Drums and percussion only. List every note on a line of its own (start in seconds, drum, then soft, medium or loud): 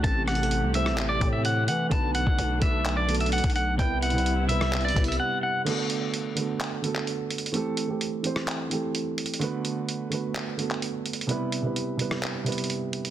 0.04 kick loud
0.04 closed hi-hat medium
0.28 cross-stick medium
0.28 closed hi-hat soft
0.35 closed hi-hat medium
0.43 closed hi-hat medium
0.51 closed hi-hat medium
0.74 closed hi-hat medium
0.86 cross-stick loud
0.98 clap loud
0.98 closed hi-hat medium
1.21 kick medium
1.21 closed hi-hat medium
1.45 closed hi-hat medium
1.68 closed hi-hat medium
1.91 kick loud
1.91 closed hi-hat medium
2.15 closed hi-hat medium
2.27 kick loud
2.39 closed hi-hat medium
2.62 kick loud
2.62 closed hi-hat medium
2.85 clap loud
2.85 closed hi-hat medium
3.09 closed hi-hat medium
3.15 closed hi-hat medium
3.20 closed hi-hat medium
3.26 closed hi-hat soft
3.32 closed hi-hat medium
3.38 closed hi-hat medium
3.44 kick loud
3.44 closed hi-hat medium
3.50 closed hi-hat medium
3.56 closed hi-hat medium
3.79 kick loud
3.79 closed hi-hat medium
4.02 closed hi-hat medium
4.10 closed hi-hat medium
4.18 closed hi-hat soft
4.26 closed hi-hat medium
4.49 closed hi-hat medium
4.61 cross-stick loud
4.73 clap loud
4.73 closed hi-hat soft
4.81 closed hi-hat medium
4.88 closed hi-hat medium
4.96 kick medium
4.96 closed hi-hat medium
5.04 closed hi-hat medium
5.12 closed hi-hat medium
5.66 closed hi-hat medium
5.66 crash medium
5.90 closed hi-hat medium
6.14 closed hi-hat medium
6.37 closed hi-hat medium
6.60 clap loud
6.60 closed hi-hat medium
6.84 closed hi-hat medium
6.95 clap medium
7.07 closed hi-hat medium
7.30 closed hi-hat medium
7.38 closed hi-hat medium
7.46 closed hi-hat medium
7.54 closed hi-hat medium
7.77 closed hi-hat medium
8.01 closed hi-hat medium
8.24 closed hi-hat medium
8.36 cross-stick loud
8.48 clap loud
8.48 closed hi-hat medium
8.71 closed hi-hat medium
8.95 closed hi-hat medium
9.18 closed hi-hat medium
9.18 open hi-hat medium
9.26 closed hi-hat medium
9.34 closed hi-hat medium
9.41 closed hi-hat medium
9.65 closed hi-hat medium
9.89 closed hi-hat medium
10.12 closed hi-hat medium
10.35 clap loud
10.35 closed hi-hat medium
10.59 closed hi-hat medium
10.70 clap medium
10.82 closed hi-hat medium
11.06 closed hi-hat medium
11.13 closed hi-hat medium
11.21 closed hi-hat medium
11.29 closed hi-hat medium
11.52 closed hi-hat medium
11.76 closed hi-hat medium
11.99 closed hi-hat medium
12.11 cross-stick loud
12.23 clap loud
12.23 closed hi-hat medium
12.46 closed hi-hat medium
12.52 closed hi-hat medium
12.58 closed hi-hat medium
12.64 closed hi-hat medium
12.70 closed hi-hat medium
12.93 closed hi-hat medium
12.93 open hi-hat medium
13.05 closed hi-hat medium